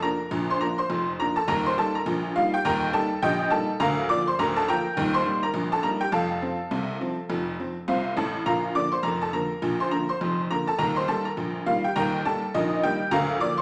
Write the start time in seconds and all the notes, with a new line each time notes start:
0.02 F3 A#3 D4 A#4 A#5
0.31 A#1 A#2
0.50 C5 C6
0.61 F3 A#3 D4 A#4 A#5
0.78 C5 C6
0.90 F1 F2
1.19 F3 A#3 D4 A#4 A#5
1.36 A4 A5
1.48 D#1 D#2 A#4 A#5
1.66 C5 C6
1.78 G3 A#3 D#4 A4 A5
1.95 A#4 A#5
2.06 A#1 A#2
2.36 G3 A#3 D#4 F4 F5
2.54 G4 G5
2.65 D#1 D#2 A#4 G5 A#5
2.93 G3 A#3 D#4 A4 A5
3.22 A#1 A#2 G4 D#5 G5
3.50 G3 A#3 D#4 A4 A5
3.80 D1 D2 A#4 F5 A#5
4.09 F3 A#3 F4 D5 D6
4.28 C5 C6
4.39 D1 D2 A#4 A#5
4.56 A4 A5
4.68 F3 A#3 F4 A#4 G5 A#5
4.97 D#1 D#2
5.14 C5 C6
5.26 G3 A#3 D#4
5.43 A#4 A#5
5.54 A#1 A#2
5.72 A4 A5
5.83 G3 A#3 D#4 A#4 A#5
6.01 G4 G5
6.12 F1 F2 A4 F5 A5
6.42 F3 C4
6.71 C2 C3
7.01 F3 C4
7.29 F1 F2
7.59 F3 C4
7.88 C2 C3 F4 C5 F5
8.17 A1 A2 A4 A5
8.46 A#1 A#2 A#4 F5 A#5
8.75 D3 F3 A#3 D5 D6
8.92 C5 C6
9.03 F1 F2 A#4 A#5
9.21 A4 A5
9.33 D3 F3 A#3 A#4 A#5
9.62 A#1 A#2
9.80 C5 C6
9.91 D3 F3 A#3 A#4 A#5
10.09 C5 C6
10.21 F1 F2
10.51 D3 F3 A#3 A#4 A#5
10.67 A4 A5
10.78 D#1 D#2 A#4 A#5
10.96 C5 C6
11.08 D#3 G3 A#3 A4 A5
11.25 A#4 A#5
11.37 A#1 A#2
11.66 D#3 G3 A#3 F4 F5
11.84 G4 G5
11.96 D#1 D#2 A#4 G5 A#5
12.25 D#3 G3 A#3 A4 A5
12.54 A#1 A#2 D#4 A#4 D#5
12.83 D#3 G3 A#3 G4 G5
13.11 D1 D2 A#4 F5 A#5
13.40 F3 A#3 D5 D6
13.58 C6